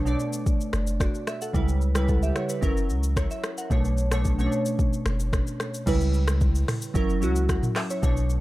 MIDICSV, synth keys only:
0, 0, Header, 1, 2, 480
1, 0, Start_track
1, 0, Key_signature, 2, "minor"
1, 0, Tempo, 540541
1, 1373, Time_signature, 4, 2, 24, 8
1, 7463, End_track
2, 0, Start_track
2, 0, Title_t, "Synth keys"
2, 0, Program_c, 0, 88
2, 0, Control_c, 0, 64, 127
2, 0, Note_on_c, 0, 47, 85
2, 0, Note_on_c, 0, 57, 77
2, 0, Note_on_c, 0, 62, 79
2, 0, Note_on_c, 0, 73, 92
2, 47, Note_off_c, 0, 47, 0
2, 47, Note_on_c, 0, 47, 87
2, 54, Note_off_c, 0, 57, 0
2, 54, Note_on_c, 0, 57, 78
2, 61, Note_off_c, 0, 62, 0
2, 61, Note_on_c, 0, 62, 80
2, 69, Note_on_c, 0, 74, 97
2, 793, Note_off_c, 0, 47, 0
2, 797, Note_off_c, 0, 57, 0
2, 800, Note_off_c, 0, 62, 0
2, 804, Note_off_c, 0, 74, 0
2, 895, Note_on_c, 0, 74, 64
2, 901, Note_on_c, 0, 66, 54
2, 1122, Note_off_c, 0, 74, 0
2, 1125, Note_off_c, 0, 66, 0
2, 1132, Note_on_c, 0, 76, 75
2, 1251, Note_off_c, 0, 76, 0
2, 1257, Note_on_c, 0, 78, 63
2, 1262, Note_on_c, 0, 69, 54
2, 1361, Note_on_c, 0, 49, 84
2, 1370, Note_on_c, 0, 55, 76
2, 1377, Note_on_c, 0, 64, 74
2, 1384, Control_c, 0, 64, 0
2, 1385, Note_on_c, 0, 71, 89
2, 1392, Note_off_c, 0, 73, 0
2, 1486, Note_off_c, 0, 78, 0
2, 1488, Note_off_c, 0, 69, 0
2, 1517, Control_c, 0, 64, 127
2, 1647, Note_off_c, 0, 49, 0
2, 1651, Note_off_c, 0, 55, 0
2, 1655, Note_off_c, 0, 64, 0
2, 1659, Note_off_c, 0, 71, 0
2, 1726, Note_on_c, 0, 49, 82
2, 1733, Note_on_c, 0, 55, 77
2, 1741, Note_on_c, 0, 64, 75
2, 1749, Note_on_c, 0, 71, 93
2, 1853, Note_on_c, 0, 78, 64
2, 1855, Note_off_c, 0, 64, 0
2, 1858, Note_off_c, 0, 71, 0
2, 1859, Note_on_c, 0, 69, 53
2, 1915, Note_off_c, 0, 49, 0
2, 1919, Note_off_c, 0, 55, 0
2, 1971, Note_off_c, 0, 78, 0
2, 1975, Note_off_c, 0, 69, 0
2, 1978, Note_on_c, 0, 76, 75
2, 1985, Note_on_c, 0, 67, 64
2, 2087, Note_off_c, 0, 76, 0
2, 2091, Note_off_c, 0, 67, 0
2, 2093, Note_on_c, 0, 73, 70
2, 2098, Note_on_c, 0, 64, 59
2, 2212, Note_off_c, 0, 73, 0
2, 2214, Note_off_c, 0, 64, 0
2, 2218, Note_on_c, 0, 71, 65
2, 2319, Note_on_c, 0, 54, 87
2, 2326, Note_on_c, 0, 61, 80
2, 2333, Note_on_c, 0, 64, 81
2, 2340, Note_on_c, 0, 70, 99
2, 2344, Control_c, 0, 64, 0
2, 2446, Note_off_c, 0, 71, 0
2, 2485, Control_c, 0, 64, 127
2, 2809, Note_off_c, 0, 64, 0
2, 2815, Note_on_c, 0, 73, 65
2, 2817, Note_off_c, 0, 70, 0
2, 2819, Note_on_c, 0, 64, 54
2, 2933, Note_off_c, 0, 73, 0
2, 2935, Note_off_c, 0, 64, 0
2, 2938, Note_on_c, 0, 76, 74
2, 3096, Note_off_c, 0, 54, 0
2, 3099, Note_off_c, 0, 61, 0
2, 3166, Note_off_c, 0, 76, 0
2, 3177, Note_on_c, 0, 78, 67
2, 3183, Note_on_c, 0, 70, 54
2, 3284, Note_on_c, 0, 47, 83
2, 3292, Note_on_c, 0, 57, 75
2, 3300, Note_on_c, 0, 62, 74
2, 3305, Control_c, 0, 64, 0
2, 3307, Note_on_c, 0, 73, 91
2, 3406, Note_off_c, 0, 78, 0
2, 3409, Note_off_c, 0, 70, 0
2, 3477, Control_c, 0, 64, 127
2, 3568, Note_off_c, 0, 47, 0
2, 3572, Note_off_c, 0, 57, 0
2, 3576, Note_off_c, 0, 62, 0
2, 3579, Note_off_c, 0, 73, 0
2, 3651, Note_on_c, 0, 47, 83
2, 3658, Note_on_c, 0, 57, 76
2, 3665, Note_on_c, 0, 62, 77
2, 3674, Note_on_c, 0, 73, 93
2, 3838, Note_off_c, 0, 47, 0
2, 3841, Note_off_c, 0, 57, 0
2, 3845, Note_off_c, 0, 62, 0
2, 3849, Note_off_c, 0, 73, 0
2, 3892, Note_on_c, 0, 47, 86
2, 3900, Note_on_c, 0, 57, 75
2, 3907, Note_on_c, 0, 61, 63
2, 3913, Note_on_c, 0, 73, 99
2, 3958, Note_off_c, 0, 61, 0
2, 3965, Note_on_c, 0, 62, 75
2, 4636, Note_off_c, 0, 47, 0
2, 4640, Note_off_c, 0, 57, 0
2, 4646, Note_off_c, 0, 73, 0
2, 4672, Note_off_c, 0, 62, 0
2, 5204, Note_on_c, 0, 49, 84
2, 5210, Note_on_c, 0, 55, 77
2, 5217, Note_on_c, 0, 64, 82
2, 5222, Control_c, 0, 64, 0
2, 5226, Note_on_c, 0, 71, 91
2, 5366, Control_c, 0, 64, 127
2, 5951, Note_off_c, 0, 49, 0
2, 5954, Note_off_c, 0, 55, 0
2, 5958, Note_off_c, 0, 64, 0
2, 5962, Note_off_c, 0, 71, 0
2, 6162, Note_on_c, 0, 54, 91
2, 6170, Note_on_c, 0, 61, 87
2, 6178, Note_on_c, 0, 64, 85
2, 6183, Control_c, 0, 64, 0
2, 6186, Note_on_c, 0, 70, 105
2, 6338, Control_c, 0, 64, 127
2, 6362, Note_off_c, 0, 54, 0
2, 6366, Note_off_c, 0, 61, 0
2, 6369, Note_off_c, 0, 64, 0
2, 6373, Note_off_c, 0, 70, 0
2, 6402, Note_on_c, 0, 54, 86
2, 6409, Note_on_c, 0, 61, 80
2, 6417, Note_on_c, 0, 64, 80
2, 6424, Note_on_c, 0, 66, 94
2, 6653, Note_on_c, 0, 78, 68
2, 6655, Note_off_c, 0, 64, 0
2, 6659, Note_off_c, 0, 66, 0
2, 6659, Note_on_c, 0, 70, 56
2, 6881, Note_off_c, 0, 78, 0
2, 6884, Note_off_c, 0, 70, 0
2, 6892, Note_on_c, 0, 76, 80
2, 6967, Note_off_c, 0, 54, 0
2, 6970, Note_off_c, 0, 61, 0
2, 7011, Note_off_c, 0, 76, 0
2, 7019, Note_on_c, 0, 73, 67
2, 7024, Note_on_c, 0, 64, 55
2, 7123, Note_on_c, 0, 47, 87
2, 7129, Note_on_c, 0, 57, 76
2, 7134, Note_off_c, 0, 73, 0
2, 7137, Note_on_c, 0, 62, 78
2, 7144, Control_c, 0, 64, 0
2, 7144, Note_on_c, 0, 73, 95
2, 7249, Note_off_c, 0, 64, 0
2, 7297, Control_c, 0, 64, 127
2, 7463, Note_off_c, 0, 47, 0
2, 7463, Note_off_c, 0, 57, 0
2, 7463, Note_off_c, 0, 62, 0
2, 7463, Note_off_c, 0, 73, 0
2, 7463, End_track
0, 0, End_of_file